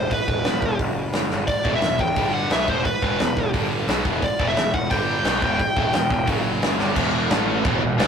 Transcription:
Already playing: C5
0.11 B4, kick, open hi-hat
0.28 E1, kick
0.44 E1, snare, open hi-hat
0.62 E1, kick
0.79 F#1, kick, open hi-hat
1.13 snare, open hi-hat
1.31 G1, snare
1.47 D5, kick, open hi-hat
1.64 E1 E2 B2 E3, kick
1.76 E5
1.81 E1 E2 B2, snare, open hi-hat
1.99 E1 E2 B2 G5, kick
2.16 G1 G2 D3 G3, kick, open hi-hat
2.34 F#5
2.50 B1 B2 F#3 B3 E5, snare, open hi-hat
2.68 E1 E2 B2 E3 C5, kick
2.85 B4, kick, open hi-hat
3.02 E1 E2 B2 E3, kick
3.19 E1 E2 B2, snare, open hi-hat
3.36 E1 E2 B2, kick
3.53 G1 G2 D3 G3, kick, open hi-hat
3.87 B1 B2 F#3 B3, snare, open hi-hat
4.05 E1 E2 B2 E3, kick
4.22 D5, kick, open hi-hat
4.39 E1 E2 B2 E3, kick
4.49 E5
4.56 E1 E2 B2, snare, open hi-hat
4.74 E1 E2 B2 F#5, kick
4.90 G1 G2 D3 G3 G5, kick, open hi-hat
5.24 B1 B2 F#3 B3, snare, open hi-hat
5.41 E1 E2 B2 E3, kick
5.59 kick, open hi-hat
5.76 E1 E2 B2 E3, kick
5.93 E1 E2 B2, snare, open hi-hat
6.10 E1 E2 B2, kick
6.27 F#1 F#2 C#3 F#3, kick, open hi-hat
6.62 snare, open hi-hat
6.79 G1 G2 D3 G3, snare
6.96 E1 E2 B2 E3, kick, crash, china
7.30 A1 A2 E3 A3, snare, china
7.64 E1 E2 B2 E3, kick, china
7.81 E1 E2 B2
7.98 D2 D3 A3 D4, snare, china

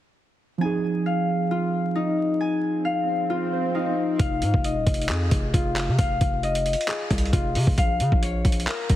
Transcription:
0.58 F3 C4 G#5
0.62 D#4 G#4
1.06 F5
1.51 F4
1.95 D#4
2.40 G#5, swell
2.85 F5
3.30 F4
3.52 C5
3.75 D#4 F5
4.19 F1 F5, kick, closed hi-hat
4.42 G#2, closed hi-hat
4.54 F1, kick
4.64 D#5, closed hi-hat
4.76 D#1
4.87 F1, kick, closed hi-hat
4.94 closed hi-hat
5.02 closed hi-hat
5.09 F2 G#4, clap, closed hi-hat
5.31 F1, kick, closed hi-hat
5.54 F1 F4, kick, closed hi-hat
5.76 clap, closed hi-hat
5.88 C3
5.99 F1 F5, kick, closed hi-hat
6.21 F1, kick, closed hi-hat
6.43 D#5, closed hi-hat
6.55 closed hi-hat
6.66 closed hi-hat
6.73 closed hi-hat
6.81 closed hi-hat
6.88 G#4, clap, closed hi-hat
7.11 C2, kick, closed hi-hat
7.18 closed hi-hat
7.25 closed hi-hat
7.33 F1 F4, kick, closed hi-hat
7.55 C3, open hi-hat
7.67 F1, kick
7.78 A#1 F5, kick, closed hi-hat
8.00 C#3, closed hi-hat
8.12 A#1, kick
8.22 C#5, closed hi-hat
8.45 A#1, kick, closed hi-hat
8.52 closed hi-hat
8.60 closed hi-hat
8.67 A#4, clap, closed hi-hat
8.89 A#1, kick, closed hi-hat

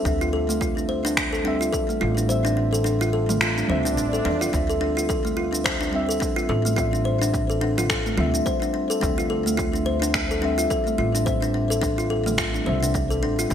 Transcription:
Already playing: G3 C4 E5
0.03 D2 G3 C4 D4, kick, cabasa
0.07 E5
0.21 F4, cabasa
0.33 A4
0.49 A3, cabasa
0.61 F4, kick, cabasa
0.77 D4, cabasa
0.89 C5
1.05 D4, cabasa
1.17 finger snap, kick, cabasa
1.33 A4, cabasa
1.44 G3 C4 D4
1.48 E5
1.61 F4, cabasa
1.73 A4, kick, cabasa
1.89 A3, cabasa
2.01 A1 F4
2.17 D4, cabasa
2.27 G3 C4 C5 E5, cabasa
2.45 D4, cabasa
2.57 D4
2.73 A4, cabasa
2.84 D4, cabasa
3.01 F4, cabasa
3.13 A4
3.29 A3, mid tom, cabasa
3.41 F4, finger snap, swell, cabasa
3.58 D4, cabasa
3.68 D2 G3 C4 C5 E5, mid tom
3.85 D4, cabasa
3.97 A1 D4, cabasa
4.13 A4, cabasa
4.25 E2 D4
4.41 F4, cabasa
4.52 D2 G3 C4 D4, kick, cabasa
4.56 E5
4.70 A4, cabasa
4.81 D4
4.97 F4, cabasa
5.09 A4, kick, cabasa
5.25 A3, cabasa
5.37 F4
5.53 D4, cabasa
5.64 C5, finger snap, kick, cabasa
5.81 D4, cabasa
5.92 G3 C4 D4 E5
6.09 A4, cabasa
6.20 D4, kick, cabasa
6.36 F4, cabasa
6.49 A1 A4
6.65 A3, cabasa
6.76 G3 C4 F4, kick, cabasa
6.80 E5
6.93 D4, cabasa
7.05 C5
7.22 D4, cabasa
7.34 D4, kick, cabasa
7.50 A4, cabasa
7.61 D4
7.78 F4, mid tom, cabasa
7.90 A4, finger snap, kick, cabasa
8.06 A3, cabasa
8.16 D2 G3 C4 F4 E5, mid tom
8.34 D4, cabasa
8.46 C5, kick, cabasa
8.62 D4, cabasa
8.74 D4
8.90 A4, cabasa
9.00 D2 G3 C4 D4 E5, kick, cabasa
9.18 F4, cabasa
9.30 A4
9.46 A3, cabasa
9.57 F4, kick, cabasa
9.73 D4, cabasa
9.86 C5
10.02 D4, cabasa
10.14 D4, finger snap, kick, cabasa
10.31 A4, cabasa
10.41 G3 C4 D4
10.45 E5
10.58 F4, cabasa
10.70 A4, kick, cabasa
10.87 A3, cabasa
10.98 A1 F4
11.15 D4, cabasa
11.25 G3 C4 C5, kick, cabasa
11.29 E5
11.42 D4, cabasa
11.54 D4
11.70 A4, cabasa
11.82 D4, kick, cabasa
11.98 F4, cabasa
12.10 A4
12.26 A3, mid tom, cabasa
12.38 F4, finger snap, kick, cabasa
12.54 D4, cabasa
12.65 C2 G3 C4 C5, mid tom
12.69 E5
12.83 D4, cabasa
12.94 D4, kick, cabasa
13.11 A4, cabasa
13.23 A1 D4
13.39 F4, cabasa
13.49 D2 G3 D4, kick, cabasa

